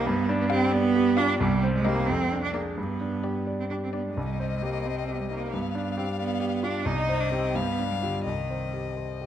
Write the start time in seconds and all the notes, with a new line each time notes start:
0.06 G2 B3
0.29 D4
0.40 B3
0.49 C4 G4 F5
0.72 B3 D5
0.96 G4
1.17 D4 F4 F5
1.39 C2 G3
1.63 C4
1.75 G#3
1.85 A#3 D#4 G4 D#5
2.07 F2 C4
2.32 D4
2.43 D4
2.54 A#3 D4 G#4 D5
2.77 G2 B3
3.01 D4
3.24 G4 D5
3.47 D5
3.60 C4
3.70 D4 G4
3.84 C4
3.93 B3 D4 D5
4.07 G#3
4.17 C2 G3 D#5
4.40 C4
4.53 G#3
4.63 A#3 G4
4.86 C4 C5
5.09 G4
5.20 G3
5.30 A#3 D#4
5.53 G2 B3 F5
5.75 D4
5.86 B3
5.97 C4 G4
6.19 B3 D5
6.40 G4
6.63 D4 F4
6.85 C2 D#4 D#5
7.09 C4
7.20 D4
7.30 C4 D#4 G4
7.53 G2 B3 F5
7.79 D4
7.90 G3
8.00 D3 F4 G4
8.25 C2 D#3 D#5
8.50 C4
8.73 G4
8.97 C5
9.21 G4